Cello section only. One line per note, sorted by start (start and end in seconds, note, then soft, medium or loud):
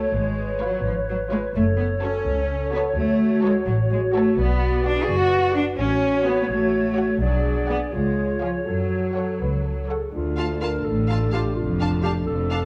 0.00 0.13 A3 medium
0.14 0.61 G#3 medium
0.61 0.84 F#3 medium
0.84 0.92 F3 medium
1.09 1.17 F#3 medium
1.32 1.40 G#3 medium
1.55 1.63 A3 medium
1.79 1.87 B3 medium
2.02 2.72 C#4 medium
2.73 2.81 B3 medium
2.97 3.43 A3 medium
3.44 3.52 G#3 medium
3.67 3.75 F#3 medium
3.91 3.99 G#3 medium
4.14 4.37 A3 medium
4.37 4.84 B3 medium
4.85 5.01 D4 medium
5.01 5.08 G#4 medium
5.08 5.55 F#4 medium
5.55 5.63 D4 medium
5.78 6.25 C#4 medium
6.25 6.41 B3 medium
6.43 6.50 B3 soft
6.50 7.21 A3 medium
7.21 7.68 F#3 medium
7.69 7.77 B3 medium
7.94 8.41 G#3 medium
8.42 8.50 F3 medium
8.67 9.87 F#3 medium
10.14 10.73 D2 medium
10.86 11.45 A2 medium
11.57 12.15 F2 medium
12.27 12.65 F2 medium